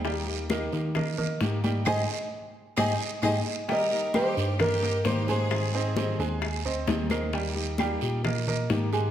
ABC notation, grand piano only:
X:1
M:4/4
L:1/8
Q:1/4=132
K:Eb
V:1 name="Grand piano"
[G,Gg]2 [B,Be]2 [B,Be] [B,Be]2 [G,Gg] | [EGA] z3 [EGA] z [EGA] z | [G,Gg]2 [G,Gg]2 [B,Be] [B,Be]2 [A,Aa]- | [A,Aa] [Cce] [Cce] [A,Aa]2 [Cce]2 [B,Be] |
[G,Gg]2 [G,Gg]2 [B,Be] [B,Be]2 [A,Aa] |]